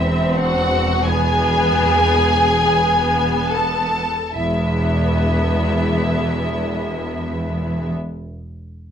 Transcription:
Already playing: E1 E2 C4 E4 E5
0.36 F#4 F#5
1.05 B3 G#4 G#5
2.63 B3
3.51 A4 A5
4.35 E1 E2 G#3 B3 E4 E5

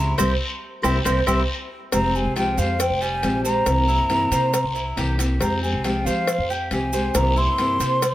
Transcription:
Already playing: C#2 F3 G#3 C4 E4 G4 A#5
0.18 C2 G3 A#3 C4 E4 G4 C6, cowbell, long guiro, claves, maracas
0.82 C2 G3 A#3 C4 E4 G4 C6, cowbell, long guiro, claves, maracas
1.04 C2 G3 A#3 C4 E4 G4 C6, cowbell, long guiro, claves, maracas
1.26 C2 G3 A#3 C4 E4 G4 C6, cowbell, long guiro, claves, maracas
1.91 F1 C3 F3 G#3 C4 G4 A#5, cowbell, long guiro, maracas
2.14 G#3 C4 G4 G#5, maracas
2.25 C2
2.35 C3 F3 G#3 C4 F4 G4 G5, cowbell, short guiro, maracas
2.57 F2 G#3 G4 C5 F5, short guiro, maracas
2.78 G5, muted steel-string acoustic guitar stroke, cowbell, long guiro, maracas
2.90 F1
3.01 G3 G#5, maracas
3.22 A#1 C3 F3 G#3 C4 G4, cowbell, short guiro, maracas
3.44 G#3 C4 G4 C5 A#5, short guiro, maracas
3.65 C2 C3 E3 A#3 C4 E4, cowbell, long guiro, maracas
3.87 A#3 C4 E4, maracas
3.99 G2
4.09 C3 E3 A#3 C4 E4, cowbell, short guiro, maracas
4.31 C3 A#3 C5, cowbell, short guiro, maracas
4.53 muted steel-string acoustic guitar stroke, cowbell, long guiro, maracas
4.64 C2
4.75 E4, maracas
4.96 C2 C3 E3 A#3 C4 E4 G4, cowbell, short guiro, maracas
5.18 A#3 C4 E4, cowbell, short guiro, maracas
5.39 F2 C3 F3 G#3 C4 G4 A#5, cowbell, long guiro, maracas
5.62 G#3 C4 G4 G#5, maracas
5.73 C2
5.84 C3 F3 G#3 C4 F4 G4 G5, cowbell, short guiro, maracas
6.05 F3 G#3 C4 G4 C5 F5, short guiro, maracas
6.26 muted steel-string acoustic guitar stroke, cowbell, long guiro, maracas
6.38 F2
6.50 G4 G5, maracas
6.70 C2 C3 F3 G#3 C4 G4 G#5, cowbell, short guiro, maracas
6.93 G#3 C4 G4 C5, short guiro, maracas
7.14 C2 C3 E3 A#3 C4 E4 A#5, cowbell, long guiro, maracas
7.35 A#3 C4 E4 C6, maracas
7.47 G2
7.58 C3 E3 A#3 C4 E4, cowbell, short guiro, maracas
7.79 C3 A#3 C5, cowbell, short guiro, maracas
8.02 muted steel-string acoustic guitar stroke, cowbell, long guiro, maracas

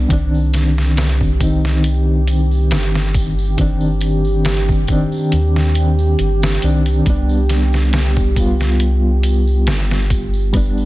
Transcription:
Already playing: G3 B3 D4
0.09 C2 D#3 C4 G4, kick, closed hi-hat, tambourine
0.13 D4
0.34 tambourine, triangle
0.53 snare, closed hi-hat, tambourine
0.78 snare, tambourine
0.97 snare, closed hi-hat, tambourine
1.20 kick, tambourine
1.39 D#3 C4 D#4, kick, closed hi-hat, tambourine
1.65 snare, tambourine
1.84 closed hi-hat, tambourine
2.27 closed hi-hat, tambourine
2.51 tambourine, triangle
2.71 G1, snare, closed hi-hat, tambourine
2.95 snare, tambourine
3.14 kick, closed hi-hat, tambourine
3.38 tambourine
3.57 D#3 C4 D4, kick, closed hi-hat, tambourine
3.81 tambourine, triangle
4.01 closed hi-hat, tambourine
4.25 tambourine
4.45 snare, closed hi-hat, tambourine
4.69 kick, tambourine
4.87 D#3 C4, kick, closed hi-hat, tambourine
4.92 D4
5.12 tambourine
5.32 D#2, closed hi-hat, tambourine
5.56 snare
5.75 closed hi-hat, tambourine
5.99 tambourine, triangle
6.19 G1, closed hi-hat, tambourine
6.42 snare, tambourine
6.62 C2 D#3 C4 D4, closed hi-hat, tambourine
6.86 closed hi-hat, tambourine
7.05 C2 G3 B3, kick, closed hi-hat, tambourine
7.10 D4
7.29 tambourine, triangle
7.49 snare, closed hi-hat, tambourine
7.73 snare, tambourine
7.93 snare, closed hi-hat, tambourine
8.16 kick, tambourine
8.36 G3 B3, kick, closed hi-hat, tambourine
8.40 F4
8.60 snare, tambourine
8.79 closed hi-hat, tambourine
9.23 closed hi-hat, tambourine
9.47 tambourine, triangle
9.67 G1, snare, closed hi-hat, tambourine
9.90 snare, tambourine
10.10 kick, closed hi-hat, tambourine
10.33 tambourine
10.53 G3 B3, kick, closed hi-hat, tambourine
10.57 D4
10.78 tambourine, triangle

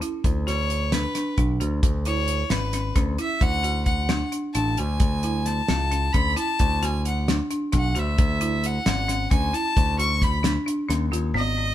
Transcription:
0.01 E4, closed hi-hat
0.24 D2, kick, closed hi-hat
0.47 F#4 C#5, snare, closed hi-hat
0.70 closed hi-hat
0.92 D4 B4, snare, closed hi-hat
1.15 D4, snare, closed hi-hat
1.38 B1 D4, kick, closed hi-hat
1.60 D2 F#4, closed hi-hat
1.83 D2, kick, closed hi-hat
2.05 E4 C#5, closed hi-hat
2.28 closed hi-hat
2.50 G#1 C#4 B4, snare, closed hi-hat
2.73 C#4, snare, closed hi-hat
2.96 D2 C#4, kick, snare, closed hi-hat
3.18 E4 E5, closed hi-hat
3.41 D2 F#5, kick, closed hi-hat
3.63 F#4, closed hi-hat
3.86 F#5, kick, closed hi-hat
4.09 D4, snare, closed hi-hat
4.32 D4, closed hi-hat
4.54 A1 D4 A5, closed hi-hat
4.77 D2 F#4 G#5, closed hi-hat
5.00 D2, kick, closed hi-hat
5.23 E4, closed hi-hat
5.46 A5, snare, closed hi-hat
5.68 C#2 C#4, snare, closed hi-hat
5.91 C#4, closed hi-hat
6.13 D2 C#4 B5, kick, closed hi-hat
6.36 E4 A5, closed hi-hat
6.59 D2, kick, closed hi-hat
6.83 F#4 G#5, snare, closed hi-hat
7.05 F#5, closed hi-hat
7.28 D4, snare, closed hi-hat
7.50 D4, closed hi-hat
7.72 B1 D4, kick, snare, closed hi-hat
7.78 F#5
7.95 D2 F#4, closed hi-hat
7.99 E5
8.18 D2, kick, closed hi-hat
8.41 E4, closed hi-hat
8.64 F#5, closed hi-hat
8.86 G#1 C#4, snare, closed hi-hat
9.08 C#4, snare, closed hi-hat
9.31 D2 C#4 G#5, kick, closed hi-hat
9.53 E4 A5, closed hi-hat
9.77 D2, kick, closed hi-hat
9.99 F#4 C#6, closed hi-hat
10.22 B5, kick, snare, closed hi-hat
10.43 D4, snare, closed hi-hat
10.66 D4, closed hi-hat
10.89 D#2 C#4, snare, closed hi-hat
11.12 D#2 F4, closed hi-hat
11.34 G#1 B3 D#5

